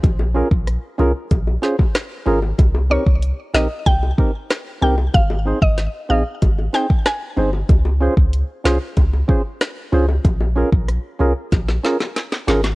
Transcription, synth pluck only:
\new Staff \with { instrumentName = "Synth pluck" } { \time 4/4 \key bes \dorian \tempo 4 = 94 r1 | r8 des''16 r8. ees''8 g''8. r8. g''16 r16 | f''8 r16 ees''16 r8 f''16 r8. g''16 r16 aes''8. r16 | r1 |
r1 | }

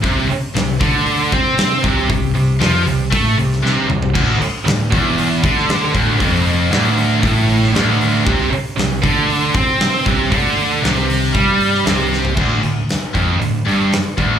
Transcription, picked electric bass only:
\new Staff \with { instrumentName = "Picked electric bass" } { \clef bass \time 4/4 \key d \minor \tempo 4 = 117 c,8 r8 c,8 d,4 c4 c,8 | c,8 c,8 f,8 c,8 a,8 c,8 c,8 c,8 | d,,8 r8 d,,8 e,,4 d,4 d,,8 | f,,4 d,,4 a,,4 d,,4 |
c,8 r8 c,8 d,4 c4 c,8 | d,4 c,4 g,4 c,4 | d,,8 d,,8 r8 f,,8 d,,8 g,,8 r8 d,,8 | }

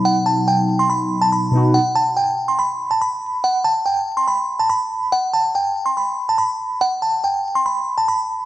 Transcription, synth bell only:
\new Staff \with { instrumentName = "Synth bell" } { \time 4/4 \key b \phrygian \tempo 4 = 142 fis''8 a''8 g''8. c'''16 b''8. a''16 b''4 | fis''8 a''8 g''8. c'''16 b''8. a''16 b''4 | fis''8 a''8 g''8. c'''16 b''8. a''16 b''4 | fis''8 a''8 g''8. c'''16 b''8. a''16 b''4 |
fis''8 a''8 g''8. c'''16 b''8. a''16 b''4 | }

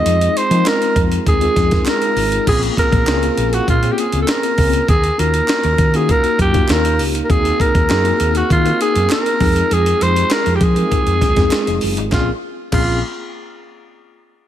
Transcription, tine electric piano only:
\new Staff \with { instrumentName = "Tine electric piano" } { \time 4/4 \key bes \minor \tempo 4 = 99 <aes c' ees' f' aes'>8 r16 <aes c' ees' f' bes'>4~ <aes c' ees' f' bes'>16 r16 <aes c' ees' f' aes'>8 <aes c' ees' f' bes'>4 r16 | <bes c' des' f' aes'>8. r16 <bes c' des' f' aes'>4 r16 <bes c' des' f' aes'>4 r16 <bes c' des' f' bes'>8 | r8 <bes des' ees' f' ges'>4 r16 <bes des' ees' f' ges'>8. r16 <bes des' ees' f' ges'>16 <bes des' ees' f' ges' g'>8. r16 | <bes c' ees' ges' aes'>8. r16 <bes c' ees' ges' aes'>4 r16 <bes c' ees' ges' bes'>4 r16 <aes c' ees' f' aes'>8~ |
<aes c' ees' f' aes'>16 r16 <aes c' ees' f' g' aes'>4 r16 <ges aes c' ees' f' bes'>8. r16 <aes c' ees' f' aes'>4 r16 | <bes c' des' f' aes'>16 r8. <bes c' des' f' aes'>8 r2 r8 | }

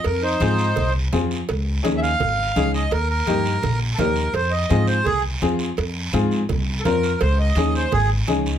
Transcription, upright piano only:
\new Staff \with { instrumentName = "Upright piano" } { \time 4/4 \key f \minor \tempo 4 = 168 r4 <c' f' aes'>8 r4. <c' f' aes'>8 r8 | r4 <des' ees' aes'>8 r4. <des' ees' aes'>8 r8 | r4 <bes ees' g'>8 r4. <bes ees' g'>8 r8 | r4 <c' f' aes'>8 r4. <c' f' aes'>8 r8 |
r4 <c' f' aes'>8 r4. <c' f' bes'>8 r8 | r4 <des' ees' aes'>8 r4. <des' ees' aes'>8 r8 | }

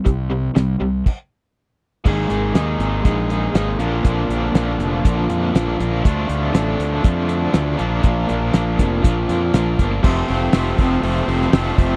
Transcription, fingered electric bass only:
\new Staff \with { instrumentName = "Fingered electric bass" } { \clef bass \time 4/4 \key bes \lydian \tempo 4 = 120 c,4 c,8 c,8 r2 | aes,,8 aes,,8 ees,8 aes,,8 bes,,4 aes,,8 bes,,8 | bes,,8 bes,,8 bes,,8 f,,8 bes,,8 f,8 bes,,8 bes,,8 | d,8 d,8 a,,8 d,8 f,4 d,8 bes,,8 |
bes,,8 bes,,8 bes,,8 f,,8 bes,,8 f,8 bes,,8 g,,8 | f,,8 f,,8 f,,8 f,,8 f,,8 f,,8 f,,8 f,,8 | }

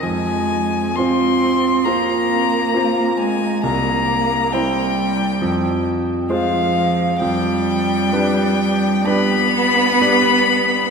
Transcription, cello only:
\new Staff \with { instrumentName = "Cello" } { \clef bass \time 4/4 \key f \dorian \tempo 4 = 66 aes4 c'4 bes4. aes8 | bes4 g4. r8 f4 | g2 b2 | }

